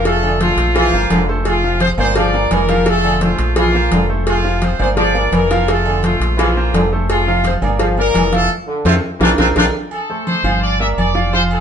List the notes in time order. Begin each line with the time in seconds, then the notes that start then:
Already playing: F1
0.05 F3 A3 F4 A4 F5, cowbell, high conga, low agogo
0.22 D3, high conga, low agogo
0.40 F3 A3 F4 A4 C5, cowbell, high conga
0.57 A#1, cowbell, high conga
0.75 E3 F3 F4 F5, cowbell, high conga, low agogo
0.92 G1 A#3 A#4 C5, high conga
1.10 F1 D3, cowbell, high conga, low timbale, low agogo
1.29 A3 A4 C5
1.45 F3 F4, cowbell, high conga, low agogo
1.62 C3 F3 F4 F5, high conga
1.80 C4 C5, cowbell, high conga, low agogo
1.97 G1 A#3 C4 A#4 C5 D5, high conga, low conga, low agogo
2.16 F3 D4 F4 D5 F5, cowbell, high conga, low conga
2.33 A#3 A#4 D5, high conga, low agogo
2.50 F1 E3 A#3 A#4, cowbell, high conga, low timbale, low agogo
2.68 F3 F4 F5, cowbell, high conga
2.86 F3 A3 F4 A4 F5, cowbell, high conga, low agogo
3.03 D3, high conga, low agogo
3.21 F3 A3 F4 A4 C5, cowbell, high conga
3.39 A#1, cowbell, high conga
3.56 E3 F3 F4 F5, cowbell, high conga, low agogo
3.74 A#3 A#4 C5, high conga
3.91 F1 D3, cowbell, high conga, low timbale, low agogo
4.09 A3 A4 C5, high conga
4.27 F3 F4, cowbell, high conga, low agogo
4.44 C3 F3 F4 F5, high conga
4.62 C4 C5, cowbell, high conga, low agogo
4.79 G1 A#3 C4 A#4 C5 D5, high conga, low conga, low agogo
4.97 F3 D4 F4 D5 F5, cowbell, high conga, low conga
5.15 A#3 A#4 D5, high conga, low agogo
5.32 F1 E3 A#3 A#4, cowbell, high conga, low agogo
5.51 F3 F4 F5, cowbell
5.68 F3 A3 F4 A4 F5, cowbell, high conga, low agogo
5.85 D3, high conga, low agogo
6.03 F3 A3 F4 A4 C5, cowbell, high conga
6.20 A#1, cowbell, high conga
6.37 E3 F3 F4 F5, cowbell, high conga, low agogo
6.41 F3 F4
6.57 A#3 A#4 C5, high conga
6.73 F1 D3, cowbell, high conga, low timbale, low agogo
6.91 A3 A4 C5, high conga
7.09 F3 F4, cowbell, high conga, low agogo
7.26 C3 F3 F4 F5, high conga
7.44 C4 C5, cowbell, high conga, low agogo
7.61 G1 A#3 A#4 D5, high conga, low conga, low agogo
7.79 F3 F4 F5, cowbell, high conga
7.97 A#3 A#4 D5, high conga, low agogo
8.14 F1 E3, cowbell, high conga, low timbale, low agogo
8.32 F3 A3 F4 A4 F5, cowbell, high conga
8.67 D3
8.85 F2 C4 E4 F4 A4 C5, cowbell, high conga, high timbale
9.20 A#1 E3 C4 D4 F4 A#4, cowbell, high conga, high timbale
9.38 A#1 C4 D4 F4 A#4, cowbell, high conga, high timbale
9.56 A#1 D3 C4 D4 F4 A#4, cowbell, high conga, high timbale
9.91 A4, high conga, low agogo
10.10 A3 A4 C5, high conga
10.26 C5, high conga, low agogo
10.43 G1 F3 F4 F5, high conga, low conga, low agogo
10.62 D5, high conga
10.79 A#3 A#4 D5 E5, high conga, low agogo
10.97 F1 D5, high conga, low agogo
11.14 F3 F4 F5, high conga
11.33 F3 F4 C5 F5, high conga, low agogo
11.51 A4, high conga, low agogo